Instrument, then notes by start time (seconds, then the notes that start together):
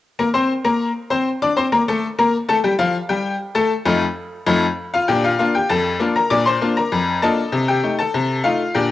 honky-tonk piano
0.19 A#3 A#4 A#5
0.34 C4 C5 C6
0.65 A#3 A#4 A#5
1.10 C4 C5 C6
1.42 D4 D5 D6
1.56 C4 C5 C6
1.72 A#3 A#4 A#5
1.88 A3 A4 A5
2.19 A#3 A#4 A#5
2.48 A3 A4 A5
2.64 G3 G4 G5
2.79 F3 F4 F5
3.09 G3 G4 G5
3.55 A3 A4 A5
3.85 F2 A3 D#4 F4
4.46 F2 A3 D#4 F4
4.94 F4 F5
5.08 A#2 D4 G4 G5
5.24 F4 F5
5.39 A#3 D4 F4 F5
5.55 G4 G5
5.69 F2 A4 A5
6.00 A#3 D4 F4
6.16 A#4 A#5
6.30 A#2 D4 D5 D6
6.46 C5 C6
6.61 A#3 D4 F4
6.77 A#4 A#5
6.92 F2
7.22 A#3 D4 F4 A4 D#5 A5
7.52 C3
7.68 G4 G5
7.83 A3 D#4
7.99 A4 A5
8.14 C3
8.44 A3 D#4 F4 F5
8.74 A#2 D4 G4 G5